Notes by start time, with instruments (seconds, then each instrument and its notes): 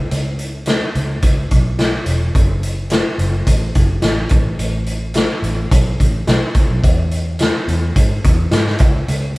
0.11 fingered electric bass C#2, closed hi-hat
0.39 closed hi-hat
0.66 snare, closed hi-hat
0.95 fingered electric bass C#2, closed hi-hat
1.22 fingered electric bass C#2, kick, closed hi-hat
1.51 fingered electric bass B1, kick, closed hi-hat
1.79 snare, closed hi-hat
2.06 fingered electric bass E1, closed hi-hat
2.35 fingered electric bass F#1, kick, closed hi-hat
2.63 closed hi-hat
2.90 snare, closed hi-hat
3.18 fingered electric bass F#1, closed hi-hat
3.47 fingered electric bass A1, kick, closed hi-hat
3.75 fingered electric bass F#1, kick, closed hi-hat
4.02 fingered electric bass A1, snare, closed hi-hat
4.29 fingered electric bass A1, kick, closed hi-hat
4.59 fingered electric bass A1, closed hi-hat
4.86 closed hi-hat
5.14 snare, closed hi-hat
5.42 fingered electric bass A1, closed hi-hat
5.71 fingered electric bass B1, kick, closed hi-hat
6.00 fingered electric bass A1, kick, closed hi-hat
6.27 fingered electric bass B1, snare, closed hi-hat
6.54 fingered electric bass C#2, kick, closed hi-hat
6.70 fingered electric bass B1
6.83 fingered electric bass E2, kick, closed hi-hat
7.11 closed hi-hat
7.39 snare, closed hi-hat
7.68 fingered electric bass E2, closed hi-hat
7.96 fingered electric bass G#2, kick, closed hi-hat
8.24 fingered electric bass E2, kick, closed hi-hat
8.51 fingered electric bass G#2, snare, closed hi-hat
8.67 snare
8.79 fingered electric bass C#2, kick, closed hi-hat
9.08 fingered electric bass C#2, closed hi-hat